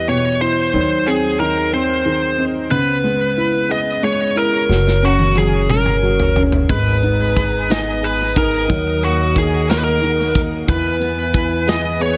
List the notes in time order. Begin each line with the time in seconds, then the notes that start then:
Already playing: E2 E3 G3 B3 E4 G4
0.07 B2 G4 C#5
0.40 E4 C5
0.73 D#2 D#3 F#3
1.06 C4 G#4
1.39 D#3 D#4 A#4
1.72 C4 C5
2.05 D#3 G#4
2.38 C4 D#4
2.71 C#2 C#3 B3 B4
3.04 G#3 B3
3.37 E4
3.69 B3 G#4 D#5
4.03 G#3 G#4 C#5
4.36 E4 A#4
4.69 F#1 F#3, snare
4.88 snare
5.02 C#4 F#4
5.19 high tom
5.35 F#3 E4 G#4, high tom
5.69 C#4 A#4, mid tom
5.86 mid tom
6.02 F#3 A#4
6.20 floor tom
6.36 C#4 E4, floor tom
6.52 floor tom
6.69 G#1 G#3 B3 B4 G#5 A#5 D#6, kick, closed hi-hat
7.03 B3 D#4, closed hi-hat
7.37 D#4 G#4, kick, closed hi-hat
7.69 B3 D#4 D#5, snare, closed hi-hat
8.02 G#4 B4, closed hi-hat
8.36 D#4 A#4, kick, closed hi-hat
8.68 D#2 D#3 F#3 A#4 D#5 F#5, kick, closed hi-hat
9.02 A#3 F#4, closed hi-hat
9.36 D#3 D#4 G#4, kick, closed hi-hat
9.68 A#3 A#4, snare, closed hi-hat
9.79 B4
9.84 A#4
10.02 D#3 A#4, closed hi-hat
10.34 A#3 D#4, kick, closed hi-hat
10.67 E2 E3 B3 E4 B4 G#5, kick, closed hi-hat
10.99 B3, closed hi-hat
11.33 E4, kick, closed hi-hat
11.67 B3 G#4 D#5, snare, closed hi-hat
12.00 B3 G#4 C#5, closed hi-hat